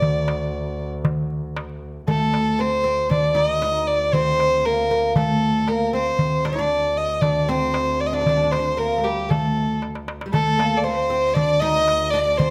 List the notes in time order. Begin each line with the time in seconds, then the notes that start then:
Already playing: D2 D5
0.02 darbuka dum
0.28 darbuka tek
0.53 darbuka ka
0.66 darbuka ka
0.80 darbuka ka
1.05 darbuka dum
1.30 darbuka ka
1.57 darbuka tek
1.69 darbuka ka
2.08 D2 A3 A4, darbuka dum
2.34 darbuka tek
2.59 C4 C5
2.84 C4, darbuka ka
3.10 D4 D5, darbuka dum
3.35 D#4 D5
3.49 D#5
3.62 D#4, darbuka tek
3.75 darbuka ka
3.87 D5
4.13 C4 C5, darbuka dum
4.40 darbuka tek
4.66 A#3 A#4
4.91 A#3
5.16 A3 A4, darbuka dum
5.68 A#3 A#4, darbuka tek
5.81 darbuka ka
5.93 C4 C5
6.19 D2, darbuka dum
6.45 D4 D5, darbuka tek
6.53 D#4
6.59 D4
6.96 D#5, darbuka ka
7.22 D4 D5, darbuka dum
7.49 C4 C5
7.74 darbuka tek
7.88 darbuka ka
8.00 D5
8.07 D#5
8.13 D4 D5
8.21 D4
8.26 D4, darbuka dum
8.37 D4
8.44 D4
8.52 D4 C5, darbuka tek
8.59 D4
8.65 darbuka ka
8.77 A#3 A#4, darbuka ka
8.92 darbuka ka
8.98 A3
9.04 G3 G4
9.29 A3 A4, darbuka dum
9.57 darbuka ka
9.82 darbuka tek
9.95 darbuka ka
10.08 darbuka tek
10.21 darbuka ka
10.26 G3
10.31 D2 A3 A4, darbuka dum
10.58 A#3, darbuka tek
10.77 D5
10.84 C4 C5, darbuka ka
11.10 C4, darbuka ka
11.28 D#5
11.34 D4 D5, darbuka dum
11.60 D#4 D#5
11.88 darbuka tek
12.01 darbuka ka
12.10 D4 D5
12.37 C4 C5, darbuka dum